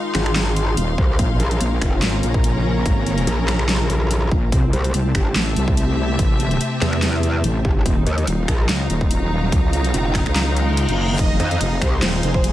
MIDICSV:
0, 0, Header, 1, 8, 480
1, 0, Start_track
1, 0, Tempo, 416667
1, 1371, Time_signature, 4, 2, 24, 8
1, 14430, End_track
2, 0, Start_track
2, 0, Title_t, "String section"
2, 0, Program_c, 0, 48
2, 0, Note_on_c, 0, 63, 78
2, 0, Note_on_c, 0, 77, 72
2, 0, Note_on_c, 0, 84, 76
2, 1371, Note_on_c, 0, 61, 88
2, 1759, Note_on_c, 0, 70, 85
2, 2217, Note_on_c, 0, 82, 73
2, 2915, Note_off_c, 0, 84, 0
2, 2916, Note_off_c, 0, 63, 0
2, 5210, Note_off_c, 0, 70, 0
2, 5210, Note_off_c, 0, 82, 0
2, 5211, Note_off_c, 0, 61, 0
2, 5211, Note_on_c, 0, 60, 77
2, 5212, Note_off_c, 0, 77, 0
2, 5584, Note_on_c, 0, 81, 66
2, 5671, Note_on_c, 0, 67, 83
2, 6249, Note_on_c, 0, 76, 91
2, 9051, Note_off_c, 0, 67, 0
2, 9051, Note_off_c, 0, 76, 0
2, 9051, Note_off_c, 0, 81, 0
2, 9052, Note_on_c, 0, 63, 88
2, 9441, Note_on_c, 0, 54, 86
2, 9475, Note_on_c, 0, 77, 75
2, 9710, Note_on_c, 0, 82, 81
2, 10594, Note_off_c, 0, 60, 0
2, 12890, Note_off_c, 0, 54, 0
2, 13333, Note_on_c, 0, 68, 86
2, 14231, Note_on_c, 0, 84, 84
2, 14430, Note_off_c, 0, 63, 0
2, 14430, Note_off_c, 0, 68, 0
2, 14430, Note_off_c, 0, 77, 0
2, 14430, Note_off_c, 0, 82, 0
2, 14430, Note_off_c, 0, 84, 0
2, 14430, End_track
3, 0, Start_track
3, 0, Title_t, "Violin section"
3, 0, Program_c, 1, 48
3, 12891, Note_on_c, 1, 63, 82
3, 12891, Note_on_c, 1, 75, 104
3, 13522, Note_off_c, 1, 63, 0
3, 13522, Note_off_c, 1, 75, 0
3, 13609, Note_on_c, 1, 72, 105
3, 13610, Note_on_c, 1, 60, 85
3, 14430, Note_off_c, 1, 60, 0
3, 14430, Note_off_c, 1, 72, 0
3, 14430, End_track
4, 0, Start_track
4, 0, Title_t, "Ambient pad"
4, 0, Program_c, 2, 92
4, 0, Note_on_c, 2, 51, 80
4, 0, Note_on_c, 2, 56, 73
4, 0, Note_on_c, 2, 65, 89
4, 1332, Note_off_c, 2, 51, 0
4, 1332, Note_off_c, 2, 56, 0
4, 1369, Note_on_c, 2, 49, 77
4, 1370, Note_on_c, 2, 58, 74
4, 5165, Note_off_c, 2, 65, 0
4, 5172, Note_off_c, 2, 49, 0
4, 5172, Note_off_c, 2, 58, 0
4, 5212, Note_on_c, 2, 48, 81
4, 5213, Note_on_c, 2, 57, 74
4, 5214, Note_on_c, 2, 64, 92
4, 9013, Note_off_c, 2, 48, 0
4, 9013, Note_off_c, 2, 57, 0
4, 9014, Note_off_c, 2, 64, 0
4, 9051, Note_on_c, 2, 51, 82
4, 9051, Note_on_c, 2, 54, 75
4, 9051, Note_on_c, 2, 65, 90
4, 12852, Note_off_c, 2, 54, 0
4, 12890, Note_on_c, 2, 56, 74
4, 14430, Note_off_c, 2, 51, 0
4, 14430, Note_off_c, 2, 56, 0
4, 14430, Note_off_c, 2, 65, 0
4, 14430, End_track
5, 0, Start_track
5, 0, Title_t, "Wobble bass"
5, 0, Program_c, 3, 39
5, 170, Note_on_c, 3, 32, 100
5, 873, Note_off_c, 3, 32, 0
5, 1131, Note_on_c, 3, 36, 105
5, 1353, Note_off_c, 3, 36, 0
5, 1609, Note_on_c, 3, 34, 93
5, 1832, Note_off_c, 3, 34, 0
5, 2091, Note_on_c, 3, 29, 100
5, 2313, Note_off_c, 3, 29, 0
5, 3770, Note_on_c, 3, 34, 98
5, 4473, Note_off_c, 3, 34, 0
5, 4490, Note_on_c, 3, 34, 94
5, 4953, Note_off_c, 3, 34, 0
5, 5451, Note_on_c, 3, 36, 99
5, 5673, Note_off_c, 3, 36, 0
5, 5931, Note_on_c, 3, 31, 99
5, 6153, Note_off_c, 3, 31, 0
5, 7851, Note_on_c, 3, 40, 101
5, 8553, Note_off_c, 3, 40, 0
5, 8811, Note_on_c, 3, 31, 107
5, 9033, Note_off_c, 3, 31, 0
5, 9291, Note_on_c, 3, 39, 92
5, 9513, Note_off_c, 3, 39, 0
5, 9771, Note_on_c, 3, 34, 98
5, 9993, Note_off_c, 3, 34, 0
5, 11451, Note_on_c, 3, 29, 97
5, 11800, Note_off_c, 3, 29, 0
5, 13131, Note_on_c, 3, 41, 100
5, 13353, Note_off_c, 3, 41, 0
5, 13612, Note_on_c, 3, 36, 101
5, 13834, Note_off_c, 3, 36, 0
5, 14430, End_track
6, 0, Start_track
6, 0, Title_t, "Wobble bass"
6, 0, Program_c, 4, 39
6, 892, Note_on_c, 4, 27, 100
6, 1114, Note_off_c, 4, 27, 0
6, 1371, Note_on_c, 4, 34, 105
6, 1593, Note_off_c, 4, 34, 0
6, 1852, Note_on_c, 4, 34, 98
6, 2074, Note_off_c, 4, 34, 0
6, 2332, Note_on_c, 4, 32, 93
6, 2554, Note_off_c, 4, 32, 0
6, 2571, Note_on_c, 4, 34, 94
6, 3273, Note_off_c, 4, 34, 0
6, 3291, Note_on_c, 4, 32, 104
6, 3753, Note_off_c, 4, 32, 0
6, 4971, Note_on_c, 4, 34, 101
6, 5193, Note_off_c, 4, 34, 0
6, 5211, Note_on_c, 4, 36, 106
6, 5433, Note_off_c, 4, 36, 0
6, 5692, Note_on_c, 4, 36, 93
6, 5914, Note_off_c, 4, 36, 0
6, 6172, Note_on_c, 4, 33, 94
6, 6394, Note_off_c, 4, 33, 0
6, 6412, Note_on_c, 4, 36, 101
6, 7114, Note_off_c, 4, 36, 0
6, 7131, Note_on_c, 4, 33, 105
6, 7593, Note_off_c, 4, 33, 0
6, 8572, Note_on_c, 4, 33, 97
6, 8794, Note_off_c, 4, 33, 0
6, 9051, Note_on_c, 4, 27, 101
6, 9273, Note_off_c, 4, 27, 0
6, 9531, Note_on_c, 4, 27, 93
6, 9754, Note_off_c, 4, 27, 0
6, 10011, Note_on_c, 4, 37, 98
6, 10233, Note_off_c, 4, 37, 0
6, 10252, Note_on_c, 4, 27, 99
6, 10954, Note_off_c, 4, 27, 0
6, 10971, Note_on_c, 4, 37, 101
6, 11433, Note_off_c, 4, 37, 0
6, 11820, Note_on_c, 4, 37, 109
6, 12519, Note_off_c, 4, 37, 0
6, 12541, Note_on_c, 4, 30, 99
6, 12874, Note_off_c, 4, 30, 0
6, 12891, Note_on_c, 4, 29, 104
6, 13113, Note_off_c, 4, 29, 0
6, 13371, Note_on_c, 4, 29, 97
6, 13593, Note_off_c, 4, 29, 0
6, 13851, Note_on_c, 4, 27, 102
6, 14074, Note_off_c, 4, 27, 0
6, 14091, Note_on_c, 4, 29, 102
6, 14430, Note_off_c, 4, 29, 0
6, 14430, End_track
7, 0, Start_track
7, 0, Title_t, "Reverse cymbal"
7, 0, Program_c, 5, 119
7, 11931, Note_on_c, 5, 60, 64
7, 12891, Note_off_c, 5, 60, 0
7, 14430, End_track
8, 0, Start_track
8, 0, Title_t, "Drums"
8, 171, Note_on_c, 9, 26, 78
8, 171, Note_on_c, 9, 38, 63
8, 171, Note_on_c, 9, 42, 55
8, 286, Note_off_c, 9, 26, 0
8, 286, Note_off_c, 9, 38, 0
8, 286, Note_off_c, 9, 42, 0
8, 300, Note_on_c, 9, 26, 58
8, 411, Note_on_c, 9, 38, 126
8, 411, Note_on_c, 9, 39, 90
8, 411, Note_on_c, 9, 42, 76
8, 416, Note_off_c, 9, 26, 0
8, 526, Note_off_c, 9, 38, 0
8, 526, Note_off_c, 9, 39, 0
8, 526, Note_off_c, 9, 42, 0
8, 651, Note_on_c, 9, 42, 58
8, 766, Note_off_c, 9, 42, 0
8, 891, Note_on_c, 9, 42, 80
8, 1006, Note_off_c, 9, 42, 0
8, 1131, Note_on_c, 9, 36, 117
8, 1246, Note_off_c, 9, 36, 0
8, 1370, Note_on_c, 9, 42, 71
8, 1371, Note_on_c, 9, 36, 127
8, 1486, Note_off_c, 9, 36, 0
8, 1486, Note_off_c, 9, 42, 0
8, 1611, Note_on_c, 9, 42, 52
8, 1726, Note_off_c, 9, 42, 0
8, 1740, Note_on_c, 9, 42, 36
8, 1850, Note_off_c, 9, 42, 0
8, 1850, Note_on_c, 9, 42, 82
8, 1965, Note_off_c, 9, 42, 0
8, 2091, Note_on_c, 9, 26, 74
8, 2091, Note_on_c, 9, 36, 68
8, 2091, Note_on_c, 9, 42, 51
8, 2206, Note_off_c, 9, 26, 0
8, 2206, Note_off_c, 9, 36, 0
8, 2206, Note_off_c, 9, 42, 0
8, 2330, Note_on_c, 9, 38, 124
8, 2330, Note_on_c, 9, 39, 94
8, 2330, Note_on_c, 9, 42, 76
8, 2445, Note_off_c, 9, 38, 0
8, 2445, Note_off_c, 9, 39, 0
8, 2445, Note_off_c, 9, 42, 0
8, 2571, Note_on_c, 9, 42, 53
8, 2686, Note_off_c, 9, 42, 0
8, 2700, Note_on_c, 9, 36, 112
8, 2811, Note_on_c, 9, 42, 79
8, 2815, Note_off_c, 9, 36, 0
8, 2926, Note_off_c, 9, 42, 0
8, 3290, Note_on_c, 9, 36, 125
8, 3290, Note_on_c, 9, 42, 68
8, 3406, Note_off_c, 9, 36, 0
8, 3406, Note_off_c, 9, 42, 0
8, 3531, Note_on_c, 9, 42, 51
8, 3646, Note_off_c, 9, 42, 0
8, 3660, Note_on_c, 9, 42, 35
8, 3770, Note_off_c, 9, 42, 0
8, 3770, Note_on_c, 9, 42, 80
8, 3885, Note_off_c, 9, 42, 0
8, 4010, Note_on_c, 9, 26, 78
8, 4010, Note_on_c, 9, 38, 60
8, 4010, Note_on_c, 9, 42, 50
8, 4125, Note_off_c, 9, 26, 0
8, 4125, Note_off_c, 9, 38, 0
8, 4125, Note_off_c, 9, 42, 0
8, 4139, Note_on_c, 9, 26, 59
8, 4251, Note_on_c, 9, 38, 123
8, 4251, Note_on_c, 9, 39, 87
8, 4251, Note_on_c, 9, 42, 76
8, 4255, Note_off_c, 9, 26, 0
8, 4366, Note_off_c, 9, 38, 0
8, 4366, Note_off_c, 9, 39, 0
8, 4366, Note_off_c, 9, 42, 0
8, 4491, Note_on_c, 9, 42, 55
8, 4606, Note_off_c, 9, 42, 0
8, 4731, Note_on_c, 9, 42, 77
8, 4847, Note_off_c, 9, 42, 0
8, 4971, Note_on_c, 9, 36, 117
8, 5086, Note_off_c, 9, 36, 0
8, 5211, Note_on_c, 9, 36, 112
8, 5212, Note_on_c, 9, 42, 68
8, 5326, Note_off_c, 9, 36, 0
8, 5327, Note_off_c, 9, 42, 0
8, 5451, Note_on_c, 9, 42, 51
8, 5567, Note_off_c, 9, 42, 0
8, 5580, Note_on_c, 9, 42, 35
8, 5691, Note_off_c, 9, 42, 0
8, 5691, Note_on_c, 9, 42, 75
8, 5806, Note_off_c, 9, 42, 0
8, 5931, Note_on_c, 9, 26, 81
8, 5931, Note_on_c, 9, 36, 63
8, 5931, Note_on_c, 9, 42, 52
8, 6046, Note_off_c, 9, 26, 0
8, 6046, Note_off_c, 9, 36, 0
8, 6046, Note_off_c, 9, 42, 0
8, 6171, Note_on_c, 9, 38, 122
8, 6171, Note_on_c, 9, 39, 85
8, 6171, Note_on_c, 9, 42, 74
8, 6287, Note_off_c, 9, 38, 0
8, 6287, Note_off_c, 9, 39, 0
8, 6287, Note_off_c, 9, 42, 0
8, 6411, Note_on_c, 9, 42, 52
8, 6526, Note_off_c, 9, 42, 0
8, 6540, Note_on_c, 9, 36, 106
8, 6651, Note_on_c, 9, 42, 73
8, 6655, Note_off_c, 9, 36, 0
8, 6766, Note_off_c, 9, 42, 0
8, 7131, Note_on_c, 9, 36, 117
8, 7131, Note_on_c, 9, 42, 71
8, 7246, Note_off_c, 9, 36, 0
8, 7246, Note_off_c, 9, 42, 0
8, 7371, Note_on_c, 9, 42, 53
8, 7486, Note_off_c, 9, 42, 0
8, 7501, Note_on_c, 9, 42, 37
8, 7611, Note_off_c, 9, 42, 0
8, 7611, Note_on_c, 9, 42, 83
8, 7726, Note_off_c, 9, 42, 0
8, 7851, Note_on_c, 9, 26, 82
8, 7851, Note_on_c, 9, 38, 61
8, 7851, Note_on_c, 9, 42, 50
8, 7967, Note_off_c, 9, 26, 0
8, 7967, Note_off_c, 9, 38, 0
8, 7967, Note_off_c, 9, 42, 0
8, 7981, Note_on_c, 9, 26, 61
8, 8092, Note_on_c, 9, 38, 114
8, 8092, Note_on_c, 9, 39, 88
8, 8092, Note_on_c, 9, 42, 78
8, 8096, Note_off_c, 9, 26, 0
8, 8207, Note_off_c, 9, 38, 0
8, 8207, Note_off_c, 9, 39, 0
8, 8207, Note_off_c, 9, 42, 0
8, 8331, Note_on_c, 9, 42, 54
8, 8446, Note_off_c, 9, 42, 0
8, 8571, Note_on_c, 9, 42, 79
8, 8686, Note_off_c, 9, 42, 0
8, 8811, Note_on_c, 9, 36, 108
8, 8926, Note_off_c, 9, 36, 0
8, 9051, Note_on_c, 9, 36, 107
8, 9051, Note_on_c, 9, 42, 74
8, 9166, Note_off_c, 9, 36, 0
8, 9166, Note_off_c, 9, 42, 0
8, 9291, Note_on_c, 9, 42, 55
8, 9406, Note_off_c, 9, 42, 0
8, 9421, Note_on_c, 9, 42, 39
8, 9532, Note_off_c, 9, 42, 0
8, 9532, Note_on_c, 9, 42, 86
8, 9647, Note_off_c, 9, 42, 0
8, 9771, Note_on_c, 9, 26, 79
8, 9771, Note_on_c, 9, 36, 60
8, 9771, Note_on_c, 9, 42, 55
8, 9886, Note_off_c, 9, 36, 0
8, 9887, Note_off_c, 9, 26, 0
8, 9887, Note_off_c, 9, 42, 0
8, 10012, Note_on_c, 9, 38, 115
8, 10012, Note_on_c, 9, 39, 91
8, 10012, Note_on_c, 9, 42, 84
8, 10127, Note_off_c, 9, 38, 0
8, 10127, Note_off_c, 9, 39, 0
8, 10127, Note_off_c, 9, 42, 0
8, 10251, Note_on_c, 9, 42, 58
8, 10367, Note_off_c, 9, 42, 0
8, 10380, Note_on_c, 9, 36, 102
8, 10491, Note_on_c, 9, 42, 80
8, 10495, Note_off_c, 9, 36, 0
8, 10607, Note_off_c, 9, 42, 0
8, 10971, Note_on_c, 9, 36, 117
8, 10971, Note_on_c, 9, 42, 79
8, 11086, Note_off_c, 9, 36, 0
8, 11087, Note_off_c, 9, 42, 0
8, 11211, Note_on_c, 9, 42, 57
8, 11327, Note_off_c, 9, 42, 0
8, 11341, Note_on_c, 9, 42, 40
8, 11452, Note_off_c, 9, 42, 0
8, 11452, Note_on_c, 9, 42, 82
8, 11567, Note_off_c, 9, 42, 0
8, 11691, Note_on_c, 9, 26, 74
8, 11691, Note_on_c, 9, 36, 58
8, 11691, Note_on_c, 9, 38, 59
8, 11691, Note_on_c, 9, 42, 54
8, 11806, Note_off_c, 9, 36, 0
8, 11807, Note_off_c, 9, 26, 0
8, 11807, Note_off_c, 9, 38, 0
8, 11807, Note_off_c, 9, 42, 0
8, 11820, Note_on_c, 9, 26, 60
8, 11931, Note_on_c, 9, 38, 119
8, 11931, Note_on_c, 9, 39, 90
8, 11931, Note_on_c, 9, 42, 84
8, 11936, Note_off_c, 9, 26, 0
8, 12047, Note_off_c, 9, 38, 0
8, 12047, Note_off_c, 9, 39, 0
8, 12047, Note_off_c, 9, 42, 0
8, 12171, Note_on_c, 9, 42, 57
8, 12286, Note_off_c, 9, 42, 0
8, 12411, Note_on_c, 9, 42, 86
8, 12526, Note_off_c, 9, 42, 0
8, 12541, Note_on_c, 9, 42, 37
8, 12656, Note_off_c, 9, 42, 0
8, 12891, Note_on_c, 9, 36, 118
8, 12892, Note_on_c, 9, 42, 73
8, 12892, Note_on_c, 9, 49, 70
8, 13006, Note_off_c, 9, 36, 0
8, 13007, Note_off_c, 9, 42, 0
8, 13007, Note_off_c, 9, 49, 0
8, 13131, Note_on_c, 9, 42, 58
8, 13247, Note_off_c, 9, 42, 0
8, 13261, Note_on_c, 9, 42, 39
8, 13372, Note_off_c, 9, 42, 0
8, 13372, Note_on_c, 9, 42, 88
8, 13372, Note_on_c, 9, 49, 49
8, 13487, Note_off_c, 9, 42, 0
8, 13487, Note_off_c, 9, 49, 0
8, 13611, Note_on_c, 9, 36, 64
8, 13612, Note_on_c, 9, 26, 73
8, 13612, Note_on_c, 9, 42, 55
8, 13726, Note_off_c, 9, 36, 0
8, 13727, Note_off_c, 9, 26, 0
8, 13727, Note_off_c, 9, 42, 0
8, 13852, Note_on_c, 9, 38, 123
8, 13852, Note_on_c, 9, 39, 95
8, 13852, Note_on_c, 9, 42, 85
8, 13852, Note_on_c, 9, 49, 67
8, 13967, Note_off_c, 9, 38, 0
8, 13967, Note_off_c, 9, 39, 0
8, 13967, Note_off_c, 9, 42, 0
8, 13967, Note_off_c, 9, 49, 0
8, 14091, Note_on_c, 9, 42, 56
8, 14207, Note_off_c, 9, 42, 0
8, 14220, Note_on_c, 9, 36, 112
8, 14331, Note_on_c, 9, 42, 83
8, 14331, Note_on_c, 9, 49, 49
8, 14335, Note_off_c, 9, 36, 0
8, 14430, Note_off_c, 9, 42, 0
8, 14430, Note_off_c, 9, 49, 0
8, 14430, End_track
0, 0, End_of_file